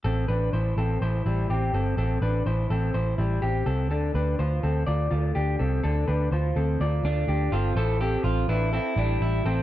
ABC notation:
X:1
M:4/4
L:1/16
Q:1/4=124
K:Am
V:1 name="Clean electric guitar"
[CA]2 [DB]2 [Ec]2 [CA]2 [Ec]2 [G,E]2 [CG]2 [CA]2 | [CA]2 [DB]2 [Ec]2 [CA]2 [Ec]2 [G,E]2 [CG]2 [CA]2 | [DA]2 [DB]2 [Fc]2 [CA]2 [Fd]2 [A,F]2 [DG]2 [CA]2 | [DA]2 [DB]2 [Fc]2 [CA]2 [Fd]2 [A,F]2 [DG]2 [CA]2 |
[Ec]2 [CA]4 [DB]2 [CA]2 [G,E]4 [CA]2 |]
V:2 name="Clean electric guitar"
z16 | z16 | z16 | z8 z2 D4 F2 |
A2 G2 F2 E2 E2 D2 E2 C2 |]
V:3 name="Picked electric bass" clef=bass
A,,,2 A,,,2 A,,,2 A,,,2 A,,,2 A,,,2 A,,,2 G,,,2 | A,,,2 A,,,2 A,,,2 A,,,2 A,,,2 A,,,2 A,,,2 C,,2 | D,,2 D,,2 D,,2 D,,2 D,,2 D,,2 D,,2 C,,2 | D,,2 D,,2 D,,2 D,,2 D,,2 D,,2 D,,2 G,,,2 |
A,,,4 A,,,2 A,,,3 z A,,,2 A,,,2 A,,,2 |]